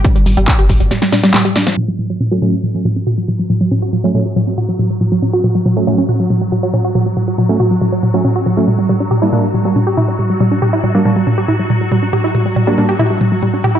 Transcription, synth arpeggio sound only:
X:1
M:4/4
L:1/16
Q:1/4=139
K:F#phr
V:1 name="Synth arpeggio sound" clef=bass
G, G, G, G, D G G, G, G, G, D G, G, G, D ^E, | F, F, F, F, C F F, F, F, F, F, C F F, F, F, | F, F, C F F, F, F, F, F, C F F, F, F, F, F, | C F F, F, F, F, F, C F F, F, F, F, F, C F |
F, F, F, F, F, C F F, F, F, F, F, C F F, F, | G, G, G, D G E G, G, G, G, D G E G, G, G, | G, D G E G, G, G, G, D G E G, G, G, G, D | G E G, G, G, G, D G E G, G, G, G, D G E |]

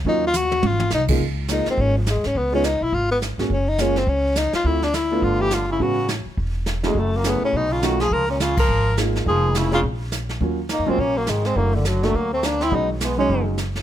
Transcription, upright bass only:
X:1
M:4/4
L:1/8
Q:"Swing" 1/4=209
K:Db
V:1 name="Upright bass" clef=bass
E,,4 A,,,2 C,,2 | D,,3 z A,,,2- (3A,,, E,, A,, | D,,3 _C,, A,,,3 A,,, | G,,,4 D,,3 z |
=D,,4 =G,,,4 | =A,,,3 z =E,,,4 | G,,,3 z _C,,4 | D,,4 A,,,4 |
F,,,4 B,,,4 | E,,2- (3E,, G,, =D,, B,,,2 A,,,2 | G,,,4 =D,,4 | _C,,4 G,,,4 |]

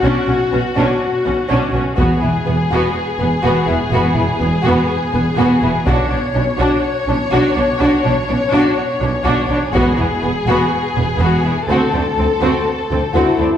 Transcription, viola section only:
X:1
M:4/4
L:1/8
Q:1/4=124
K:Bdor
V:1 name="Viola section"
C C C C z C C C | B, B, B, B, z B, B, B, | B, B, B, B, z B, B, B, | D D D D z D D D |
D D D D z D D D | B, B, B, B, z B, B, B, | =C C C C z C C C |]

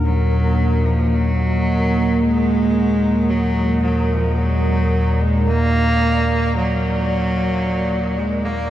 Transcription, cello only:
X:1
M:4/4
L:1/16
Q:1/4=55
K:Ebm
V:1 name="Cello" clef=bass
G,3 F, G,4 A,4 G,2 G, F, | G,3 A, B,4 G,6 A, B, |]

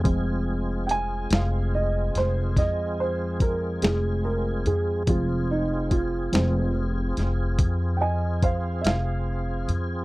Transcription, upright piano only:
X:1
M:12/8
L:1/8
Q:3/8=48
K:Fm
V:1 name="Upright piano"
z2 [ga] f e c e c B A B A | F E F z4 [ega] [cf] [=ef]2 z |]
V:2 name="Upright piano" clef=bass
[F,A,C]3 z8 z | [F,A,C] z2 [F,A,C] z8 |]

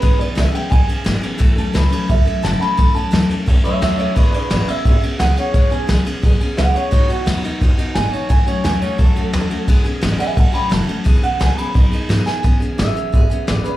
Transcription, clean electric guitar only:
X:1
M:4/4
L:1/8
Q:1/4=174
K:E
V:1 name="Clean electric guitar"
B =d e =g ^g z3 | z A B2 e2 a b- | b a2 z2 [ce] [ce] [ce] | [B=d] [Bd] [Bd] e2 z f c |
c G z4 f c | c F z4 g c | g c g c A4 | z3 [eg] [fa] [=gb] a2 |
z f g b4 g | z2 e4 =d B |]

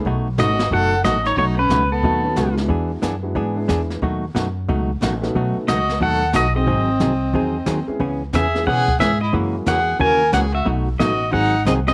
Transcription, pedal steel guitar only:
X:1
M:4/4
L:1/8
Q:"Swing" 1/4=181
K:Bmix
V:1 name="Pedal steel guitar"
z2 d2 f2 d c | c B2 A4 z | z8 | z8 |
z2 d2 f2 d d- | d6- d z | z2 e2 f2 e d | z2 f2 g2 f e |
z2 d2 f2 d d |]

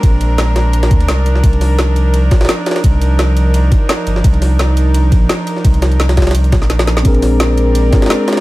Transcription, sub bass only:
X:1
M:4/4
L:1/8
Q:"Swing 16ths" 1/4=171
K:Cm
V:1 name="Sub bass" clef=bass
B,,,4- B,,, D,, C,,2 | C,,4- C,, B,,, z2 | C,,4- C,, z2 G,,, | C,,4- C,, B,,, z2 |
C,,4- C,, B,,,3 | B,,,4- B,,, A,,, z2 |]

